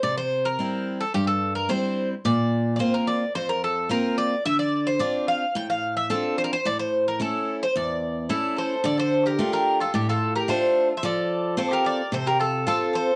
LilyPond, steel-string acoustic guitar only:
\new Staff \with { instrumentName = "Steel-string acoustic guitar" } { \time 4/4 \key d \minor \tempo 4 = 109 c4 <g c' e'>4 g,4 <g c' e'>4 | bes,4 <bes c' f'>4 f,4 <bes c' f'>4 | d4 <c' d' f'>4 a,4 <c' d' f'>4 | a,4 <a cis' e'>4 e,4 <a cis' e'>4 |
d4 <a d' f'>4 a,4 <a d' f'>4 | f4 <c' f' a'>4 c4 <c' f' a'>4 | }